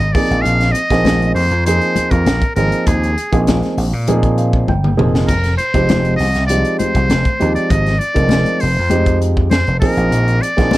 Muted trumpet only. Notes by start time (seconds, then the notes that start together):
Already playing: D#5
0.13 D5
0.42 F5
0.72 D#5
1.35 C5
1.66 C5
2.11 A#4
2.56 A#4
2.87 G#4
5.27 A#4
5.58 C5
6.16 D#5
6.47 D5
6.79 C5
7.55 D5
7.70 D#5
7.99 D5
8.61 C5
9.51 C5
9.80 A#4
10.42 D5